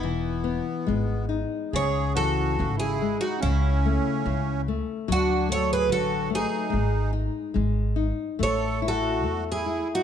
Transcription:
<<
  \new Staff \with { instrumentName = "Twelve-string acoustic guitar" } { \time 2/4 \key gis \phrygian \tempo 4 = 72 e'4. r8 | \key cis \minor cis''8 a'8. gis'8 fis'16 | e'4. r8 | fis'8 cis''16 b'16 a'8 gis'8~ |
gis'8 r4. | cis''8 a'8. gis'8 fis'16 | }
  \new Staff \with { instrumentName = "Accordion" } { \time 2/4 \key gis \phrygian b4. r8 | \key cis \minor gis'8 fis'8. e'8 dis'16 | cis'4. r8 | d'8 a'16 gis'16 fis'8 dis'8~ |
dis'8 r4. | a'8 fis'8. e'8 dis'16 | }
  \new Staff \with { instrumentName = "Nylon-string guitar" } { \clef bass \time 2/4 \key gis \phrygian e8 b8 gis8 dis'8 | \key cis \minor cis8 e8 cis8 gis8 | cis8 a8 cis8 a8 | fis8 a8 d8 a8 |
gis8 dis'8 gis8 dis'8 | a8 e'8 a8 e'8 | }
  \new Staff \with { instrumentName = "Upright bass" } { \clef bass \time 2/4 \key gis \phrygian e,,4 gis,,4 | \key cis \minor cis,4 gis,,4 | cis,4 cis,4 | d,4 a,,4 |
gis,,4 gis,,4 | a,,4 e,4 | }
>>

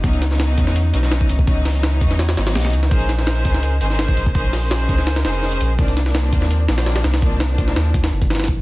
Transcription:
<<
  \new Staff \with { instrumentName = "String section" } { \time 4/4 \key des \lydian \tempo 4 = 167 <fes ges ces' des' ees'>8. <fes ges ces' des' ees'>4.~ <fes ges ces' des' ees'>16 <fes ges ces' des' ees'>16 <fes ges ces' des' ees'>4~ <fes ges ces' des' ees'>16 | <fes ges ces' des' ees'>8. <fes ges ces' des' ees'>4.~ <fes ges ces' des' ees'>16 <fes ges ces' des' ees'>16 <fes ges ces' des' ees'>4~ <fes ges ces' des' ees'>16 | <des' ees' aes' bes' c''>8. <des' ees' aes' bes' c''>4.~ <des' ees' aes' bes' c''>16 <des' ees' aes' bes' c''>16 <des' ees' aes' bes' c''>4~ <des' ees' aes' bes' c''>16 | <des' ees' aes' bes' c''>8. <des' ees' aes' bes' c''>4.~ <des' ees' aes' bes' c''>16 <des' ees' aes' bes' c''>16 <des' ees' aes' bes' c''>4~ <des' ees' aes' bes' c''>16 |
<ees f bes c' d'>8. <ees f bes c' d'>4.~ <ees f bes c' d'>16 <ees f bes c' d'>16 <ees f bes c' d'>4~ <ees f bes c' d'>16 | <ees f bes c' d'>8. <ees f bes c' d'>4.~ <ees f bes c' d'>16 r4. | }
  \new Staff \with { instrumentName = "Sub bass" } { \clef bass \time 4/4 \key des \lydian des,4. fes,4 ces,4 des,8~ | des,4. fes,4 aes,,8 ces,8 des,8 | bes,,4. des,4 aes,,4 bes,,8~ | bes,,4. des,4 f,,4 bes,,8 |
c,4. ees,4 bes,,4 c,8~ | c,4. ees,4 g,,4 bes,,8 | }
  \new DrumStaff \with { instrumentName = "Drums" } \drummode { \time 4/4 <hh bd>16 hh16 <hh sn>16 sn16 <hh sn>8 <hh bd>16 sn16 hh8 hh16 sn16 <hh sn>16 bd16 hh16 bd16 | <hh bd>8 <hho sn>8 <hh sn>8 <hh bd>16 sn16 <hh sn>16 <hh sn>16 <hh sn>16 <hh sn>16 <hh sn>16 <hh sn>16 hh16 sn16 | <hh bd>16 hh16 <hh sn>16 sn16 <hh sn>8 <hh bd>16 sn16 hh8 hh16 sn16 <hh sn>16 bd16 hh16 bd16 | <hh bd>8 <hho sn>8 <hh sn>8 <hh bd>16 sn16 <hh sn>16 <hh sn>16 <hh sn>8 sn16 hh16 hh8 |
<hh bd>16 hh16 <hh sn>16 sn16 <hh sn>8 <hh bd>16 sn16 hh8 <hh sn>16 <hh sn>16 <hh sn>16 <hh sn>16 <hh sn>16 <hh sn>16 | <hh bd>8 <hh sn>8 <hh bd>16 sn16 <hh sn>8 <hh bd>16 <hh sn>8 <hh bd>16 <hh sn>32 <hh sn>32 <hh sn>32 <hh sn>32 <hh bd>8 | }
>>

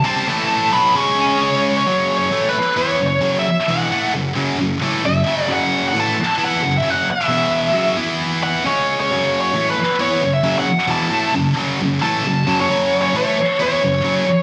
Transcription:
<<
  \new Staff \with { instrumentName = "Lead electric guitar" } { \time 4/4 \key fis \minor \tempo 4 = 133 a''4. b''8 cis'''8 gis''8 cis''8. cis''16~ | \tuplet 3/2 { cis''4 cis''8~ cis''8 b'4 cis''4 cis''8~ cis''8 e''4 } | fis''4 r2 e''4 | fis''8. fis''16 a''4 fis''8. e''16 fis''8 e''8~ |
e''4. r4 fis''8 cis''8. cis''16~ | \tuplet 3/2 { cis''4 cis''8~ cis''8 b'4 cis''4 e''8~ e''8 fis''4 } | a''4 r4. a''4~ a''16 cis''16~ | \tuplet 3/2 { cis''4 cis''8 } cis''4 cis''2 | }
  \new Staff \with { instrumentName = "Distorted electric guitar" } { \clef bass \time 4/4 \key fis \minor <bis, g bis>8 <a, e a>4 <b, fis b>8 <cis gis cis'>2 | <fis, cis fis>4 <a, e a>8 r8 <e b e'>8 <fis, cis>8 <fis, cis fis>8 r8 | <e, b, e>8 <a, e a>8 <fis, cis>8 <fis, cis fis>8 <fis, cis>8 <a, e a>8 <fis, cis>8 <fis, cis fis>8 | <fis, cis fis>4 <a, e a>8 r8 <e b e'>8 <fis, cis>8 <fis, cis fis>8 r8 |
<e, b, e>4 <fis, cis fis>8 <e b e'>4. <cis gis cis'>4 | <fis, cis fis>4 <a, e a>8 r8 <e b e'>8 <fis, cis>8 <fis, cis fis>8 r8 | <e, b, e>8 <a, e a>8 <fis, cis>8 <fis, cis fis>8 <fis, cis>8 <a, e a>8 <fis, cis>8 <fis, cis fis>8 | <fis, cis fis>4 <a, e a>8 r8 <e b e'>8 <fis, cis>8 <fis, cis fis>8 r8 | }
>>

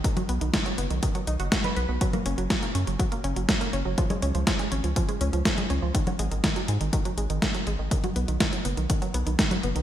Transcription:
<<
  \new Staff \with { instrumentName = "Synth arpeggio sound" } { \clef bass \time 4/4 \key b \lydian \tempo 4 = 122 dis16 fis16 b16 dis16 dis16 fis16 b16 dis16 dis16 fis16 dis'16 fis'16 fis'16 b'16 b'16 b16 | fis16 ais16 cis'16 fis16 fis16 ais16 cis'16 fis16 fis16 ais16 cis'16 fis16 fis16 ais16 cis'16 fis16 | eis16 gis16 cis'16 eis16 eis16 gis16 cis'16 eis16 eis16 gis16 cis'16 eis16 eis16 gis16 cis'16 eis16 | dis16 fis16 gis16 dis16 dis16 fis16 gis16 dis16 dis16 fis16 gis16 dis16 dis16 fis16 gis16 dis16 |
dis16 fis16 b16 dis16 dis16 fis16 b16 dis16 dis16 fis16 b16 dis16 dis16 fis16 b16 dis16 | }
  \new Staff \with { instrumentName = "Analog synth bass" } { \clef bass \time 4/4 \key b \lydian r8 b,,16 b,,16 r8 fis,,16 b,,16 r8 b,,16 fis,,16 r8 b,,16 b,,16 | r8 fis,,16 fis,,16 r8 fis,16 fis,,16 r8 fis,,16 fis,,16 r8 fis,,16 fis,,16 | r8 cis,16 cis,16 r8 gis,,16 cis,16 r8 cis,16 cis,16 r8 cis,16 cis,16 | r8 gis,,16 gis,,16 r8 gis,16 gis,,16 r8 gis,,16 gis,,16 r8 gis,,16 gis,,16 |
r8 b,,16 b,,16 r8 fis,,16 b,,16 r8 b,,16 b,,16 r8 fis,,16 b,,16 | }
  \new DrumStaff \with { instrumentName = "Drums" } \drummode { \time 4/4 <hh bd>16 <cgho hh>16 hh16 hh16 <hh bd sn>16 hh16 hh16 hh16 <hh bd>16 hh16 hh16 hh16 <hh bd sn>16 <cgho hh>16 hh8 | <hh bd>16 <cgho hh>16 hh16 hh16 <hh bd sn>16 hh16 hh16 hh16 <hh bd>16 hh16 hh16 hh16 <hh bd sn>16 hh16 hh8 | <hh bd>16 <cgho hh>16 hh16 hh16 <hh bd sn>16 hh16 hh16 hh16 <hh bd>16 hh16 hh16 hh16 <hh bd sn>16 <cgho hh>16 hh8 | <hh bd>16 <cgho hh>16 hh16 hh16 <hh bd sn>16 hh16 hh16 hh16 <hh bd>16 hh16 hh16 hh16 <hh bd sn>16 hh16 hh8 |
<hh bd>16 <cgho hh>16 hh16 hh16 <hh bd sn>16 hh16 hh16 hh16 <hh bd>16 hh16 hh16 hh16 <hh bd sn>16 <cgho hh>16 hh16 hh16 | }
>>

